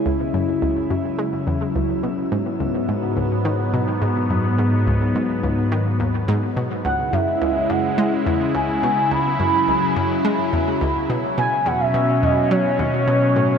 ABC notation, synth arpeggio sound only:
X:1
M:4/4
L:1/8
Q:1/4=106
K:C#m
V:1 name="Synth arpeggio sound" clef=bass
C,, F,, C,, F,, G, E,, C,, B,, | G,, C,, G,, C,, D, B,, G,, F,, | G,, C,, G,, C,, D, D,, G,, B,, | C,, F,, C,, F,, G, E,, C,, B,, |
C,, F,, C,, F,, G, E,, C,, B,, | B,, E,, B,, E,, F, D,, B,, A,, |]